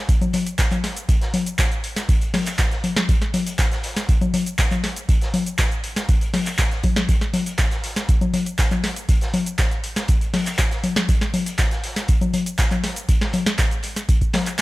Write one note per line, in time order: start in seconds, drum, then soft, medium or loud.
0.09 kick loud
0.09 closed hi-hat medium
0.09 cabasa medium
0.21 closed hi-hat soft
0.21 low conga medium
0.21 cabasa soft
0.33 closed hi-hat medium
0.33 open hi-hat loud
0.33 low conga medium
0.46 closed hi-hat medium
0.46 cabasa medium
0.59 kick loud
0.59 snare loud
0.59 clap loud
0.59 closed hi-hat medium
0.59 cabasa medium
0.71 clap soft
0.71 closed hi-hat soft
0.71 low conga medium
0.71 cabasa soft
0.84 snare soft
0.84 closed hi-hat medium
0.84 open hi-hat loud
0.97 closed hi-hat medium
0.97 cabasa medium
1.09 kick loud
1.09 closed hi-hat loud
1.09 closed hi-hat medium
1.09 cabasa medium
1.21 snare soft
1.21 closed hi-hat soft
1.21 cabasa soft
1.34 closed hi-hat medium
1.34 open hi-hat loud
1.34 low conga loud
1.46 closed hi-hat medium
1.46 cabasa medium
1.59 kick loud
1.59 snare loud
1.59 clap loud
1.59 closed hi-hat medium
1.59 cabasa medium
1.72 closed hi-hat soft
1.72 cabasa soft
1.84 closed hi-hat medium
1.84 open hi-hat loud
1.96 snare soft
1.96 closed hi-hat medium
1.96 cabasa medium
2.09 kick loud
2.09 closed hi-hat medium
2.09 cabasa medium
2.21 closed hi-hat soft
2.21 cabasa soft
2.34 snare soft
2.34 open hi-hat loud
2.34 open hi-hat medium
2.34 low conga medium
2.46 clap soft
2.46 closed hi-hat medium
2.46 cabasa medium
2.58 kick loud
2.58 snare loud
2.58 clap loud
2.58 closed hi-hat loud
2.58 closed hi-hat medium
2.58 cabasa medium
2.71 snare medium
2.71 closed hi-hat soft
2.71 cabasa soft
2.84 closed hi-hat medium
2.84 open hi-hat loud
2.84 low conga medium
2.96 snare medium
2.96 closed hi-hat medium
2.96 low conga medium
2.96 cabasa medium
3.09 kick loud
3.09 closed hi-hat medium
3.09 closed hi-hat loud
3.09 cabasa medium
3.22 snare soft
3.22 closed hi-hat soft
3.22 cabasa soft
3.34 closed hi-hat medium
3.34 open hi-hat loud
3.34 low conga loud
3.46 closed hi-hat soft
3.46 closed hi-hat medium
3.46 cabasa medium
3.59 kick loud
3.59 snare loud
3.59 clap loud
3.59 closed hi-hat medium
3.59 cabasa medium
3.72 snare medium
3.72 closed hi-hat soft
3.72 cabasa soft
3.83 snare soft
3.83 closed hi-hat medium
3.83 open hi-hat loud
3.97 snare soft
3.97 closed hi-hat medium
3.97 cabasa medium
4.09 kick loud
4.09 closed hi-hat medium
4.09 cabasa medium
4.21 closed hi-hat soft
4.21 low conga loud
4.21 cabasa soft
4.34 closed hi-hat medium
4.34 open hi-hat loud
4.34 low conga loud
4.46 closed hi-hat medium
4.46 cabasa medium
4.58 kick loud
4.58 snare loud
4.58 clap loud
4.58 closed hi-hat medium
4.58 cabasa medium
4.71 clap soft
4.71 closed hi-hat soft
4.71 low conga medium
4.71 cabasa soft
4.83 snare soft
4.83 closed hi-hat medium
4.83 open hi-hat loud
4.96 closed hi-hat medium
4.96 cabasa medium
5.09 kick loud
5.09 closed hi-hat medium
5.09 cabasa medium
5.21 snare soft
5.21 closed hi-hat soft
5.21 cabasa soft
5.34 closed hi-hat medium
5.34 open hi-hat loud
5.34 low conga loud
5.46 closed hi-hat medium
5.46 cabasa medium
5.59 kick loud
5.59 snare loud
5.59 clap loud
5.59 closed hi-hat medium
5.59 cabasa medium
5.71 closed hi-hat soft
5.71 cabasa soft
5.84 closed hi-hat medium
5.84 open hi-hat loud
5.96 snare soft
5.96 closed hi-hat medium
5.96 cabasa medium
6.09 kick loud
6.09 closed hi-hat medium
6.09 cabasa medium
6.21 closed hi-hat soft
6.21 cabasa soft
6.34 snare soft
6.34 open hi-hat loud
6.34 open hi-hat medium
6.34 low conga loud
6.46 clap soft
6.46 closed hi-hat medium
6.46 cabasa medium
6.59 kick loud
6.59 snare loud
6.59 clap loud
6.59 closed hi-hat medium
6.59 cabasa medium
6.71 snare soft
6.71 closed hi-hat soft
6.71 cabasa soft
6.83 kick medium
6.83 closed hi-hat medium
6.83 open hi-hat loud
6.83 low conga medium
6.96 snare medium
6.96 closed hi-hat soft
6.96 low conga medium
6.96 cabasa medium
7.09 kick loud
7.09 closed hi-hat medium
7.09 closed hi-hat loud
7.09 cabasa medium
7.21 snare soft
7.21 closed hi-hat soft
7.21 cabasa soft
7.34 closed hi-hat medium
7.34 open hi-hat loud
7.34 low conga loud
7.46 closed hi-hat soft
7.46 closed hi-hat medium
7.46 cabasa medium
7.58 kick loud
7.58 snare loud
7.58 clap loud
7.58 closed hi-hat medium
7.58 closed hi-hat soft
7.58 cabasa medium
7.71 snare soft
7.71 closed hi-hat soft
7.71 cabasa soft
7.84 snare soft
7.84 closed hi-hat medium
7.84 open hi-hat loud
7.96 snare soft
7.96 closed hi-hat soft
7.96 cabasa medium
8.09 kick loud
8.09 closed hi-hat medium
8.09 cabasa medium
8.21 closed hi-hat soft
8.21 low conga loud
8.21 cabasa soft
8.34 closed hi-hat medium
8.34 open hi-hat loud
8.34 low conga loud
8.46 closed hi-hat medium
8.46 cabasa medium
8.59 kick loud
8.59 snare loud
8.59 clap loud
8.59 closed hi-hat loud
8.59 closed hi-hat medium
8.59 cabasa medium
8.71 clap soft
8.71 closed hi-hat soft
8.71 low conga loud
8.71 cabasa soft
8.84 snare soft
8.84 closed hi-hat medium
8.84 open hi-hat loud
8.96 closed hi-hat medium
8.96 cabasa medium
9.09 kick loud
9.09 closed hi-hat medium
9.09 cabasa medium
9.21 snare soft
9.21 closed hi-hat soft
9.21 cabasa soft
9.34 closed hi-hat medium
9.34 open hi-hat loud
9.34 low conga loud
9.46 closed hi-hat medium
9.46 cabasa medium
9.59 kick loud
9.59 snare loud
9.59 clap loud
9.59 closed hi-hat medium
9.59 cabasa medium
9.71 closed hi-hat soft
9.71 cabasa soft
9.84 closed hi-hat medium
9.84 open hi-hat loud
9.96 snare soft
9.96 closed hi-hat medium
9.96 cabasa medium
10.08 kick loud
10.08 closed hi-hat medium
10.08 cabasa medium
10.21 closed hi-hat soft
10.21 cabasa soft
10.34 snare soft
10.34 open hi-hat loud
10.34 open hi-hat medium
10.34 low conga loud
10.46 clap soft
10.46 closed hi-hat medium
10.46 cabasa medium
10.58 kick loud
10.58 snare loud
10.58 clap loud
10.58 closed hi-hat medium
10.58 cabasa medium
10.71 snare medium
10.71 closed hi-hat soft
10.71 cabasa soft
10.84 closed hi-hat medium
10.84 open hi-hat loud
10.84 low conga medium
10.96 snare medium
10.96 closed hi-hat medium
10.96 low conga medium
10.96 cabasa medium
11.09 kick loud
11.09 closed hi-hat medium
11.09 cabasa medium
11.21 snare soft
11.21 closed hi-hat soft
11.21 cabasa soft
11.34 closed hi-hat medium
11.34 open hi-hat loud
11.34 low conga medium
11.46 closed hi-hat soft
11.46 closed hi-hat medium
11.46 cabasa medium
11.58 kick loud
11.58 snare loud
11.58 clap loud
11.58 closed hi-hat medium
11.58 cabasa medium
11.71 snare medium
11.71 closed hi-hat soft
11.71 cabasa soft
11.84 snare soft
11.84 closed hi-hat medium
11.84 open hi-hat loud
11.96 snare soft
11.96 closed hi-hat medium
11.96 cabasa medium
12.08 kick loud
12.08 closed hi-hat medium
12.08 cabasa medium
12.21 closed hi-hat soft
12.21 low conga medium
12.21 cabasa soft
12.33 closed hi-hat medium
12.33 open hi-hat loud
12.33 low conga medium
12.46 closed hi-hat medium
12.46 cabasa medium
12.59 kick loud
12.59 snare loud
12.59 clap loud
12.59 closed hi-hat medium
12.59 cabasa medium
12.71 clap soft
12.71 closed hi-hat soft
12.71 low conga medium
12.71 cabasa soft
12.84 snare soft
12.84 closed hi-hat medium
12.84 open hi-hat loud
12.96 closed hi-hat medium
12.96 cabasa medium
13.09 kick loud
13.09 closed hi-hat medium
13.09 cabasa medium
13.21 snare soft
13.21 closed hi-hat soft
13.21 cabasa soft
13.33 closed hi-hat medium
13.33 open hi-hat loud
13.33 low conga medium
13.46 snare medium
13.46 closed hi-hat medium
13.46 cabasa medium
13.58 kick loud
13.58 snare loud
13.58 clap loud
13.58 closed hi-hat medium
13.58 cabasa medium
13.71 closed hi-hat soft
13.71 cabasa soft
13.83 closed hi-hat medium
13.83 open hi-hat loud
13.96 snare soft
13.96 closed hi-hat medium
13.96 cabasa medium
14.09 kick loud
14.09 closed hi-hat medium
14.09 cabasa medium
14.21 kick medium
14.21 closed hi-hat soft
14.21 cabasa soft
14.33 snare loud
14.33 snare soft
14.33 closed hi-hat medium
14.33 open hi-hat loud
14.33 low conga medium
14.46 clap soft
14.46 closed hi-hat medium
14.46 cabasa medium